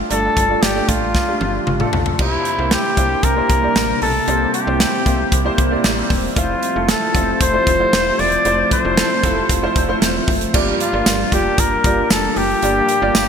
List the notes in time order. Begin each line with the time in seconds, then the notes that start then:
Already playing: G2 A3 D4 F4 D5
0.10 G1 G2 A3 D4 F4 A4 D5, closed hi-hat
0.37 G1, kick, closed hi-hat
0.49 A3 D4 F4 D5
0.62 G1 G4, snare, closed hi-hat
0.75 A3 D4 F4 D5
0.89 A1 F4, kick, closed hi-hat
1.15 kick, snare
1.27 A3 D4 F4 G4
1.41 G1, high tom
1.67 G1, mid tom
1.80 A3 D4 F4 A4, mid tom
1.93 B1, floor tom
2.06 floor tom
2.19 C2 C3 G3 A#3 D4 E4 G4 C5 E5, kick, crash
2.45 closed hi-hat
2.58 C2 A#3 E4 G4 C5
2.71 G4, snare, closed hi-hat
2.97 C2 A#3 E4 G4 C5, kick, closed hi-hat
3.23 C2 A#4, kick, closed hi-hat
3.36 A#3 E4 G4 C5
3.50 C2, kick, closed hi-hat
3.62 A#3 E4 G4 D5
3.76 A1, snare, closed hi-hat
4.02 B1 A4, open hi-hat
4.27 C2 C3 A#3 C4 E4 G4 C5, closed hi-hat
4.54 G4, closed hi-hat
4.66 C2 A#3 E4 G4 C5
4.80 snare, closed hi-hat
5.06 C2 A#3 E4 G4 C5, kick, closed hi-hat
5.32 C2, kick, closed hi-hat
5.44 A#3 E4 G4 C5
5.58 C2, kick, closed hi-hat
5.71 A#3 E4 G4 D5
5.84 A1, snare, closed hi-hat
6.10 E1, kick, open hi-hat
6.36 F1 F3 A3 E4 F4 G4 A4 C5, kick, closed hi-hat
6.63 closed hi-hat
6.75 F1 A3 E4 F4 A4
6.89 A4, snare, closed hi-hat
7.14 F1 A3 E4 F4 C5, kick, closed hi-hat
7.41 F1 C5, kick, closed hi-hat
7.53 A3 E4 F4 C5
7.67 F1, kick, closed hi-hat
7.79 A3 E4 F4 C5
7.93 E1, snare, closed hi-hat
8.19 E1 D5, open hi-hat
8.32 closed hi-hat
8.45 F1 A3 E4 F4 C5, closed hi-hat
8.71 C5, kick, closed hi-hat
8.84 F1 A3 E4 F4 C5
8.97 F3 E4 A4, snare, closed hi-hat
9.23 F1 F3 A3 E4 F4 A4, kick, closed hi-hat
9.49 F1, kick, closed hi-hat
9.62 A3 E4 F4 C5
9.76 F1, kick, closed hi-hat
9.88 A3 E4 F4 C5
10.02 E1, snare, closed hi-hat
10.28 F#1, kick, open hi-hat
10.41 closed hi-hat
10.53 G1 G2 G3 A#3 D4 F4 G4 A#4 D5 A5, kick, crash
10.80 F4, closed hi-hat
10.93 G1 A#3 F4 G4 D5
11.06 G1, snare, closed hi-hat, tambourine
11.32 F1 A#3 F4 G4 D5, kick, closed hi-hat
11.58 G1 A#4, kick, closed hi-hat
11.84 G1 A#3 F4 G4 D5, kick, closed hi-hat
12.10 F1 A4, snare, closed hi-hat, tambourine
12.36 F#1 G4, open hi-hat
12.62 G1 G2 A#3 F4 G4 D5, closed hi-hat
12.89 closed hi-hat
13.01 G1 A#3 F4 G4 D5
13.15 G1, snare, closed hi-hat, tambourine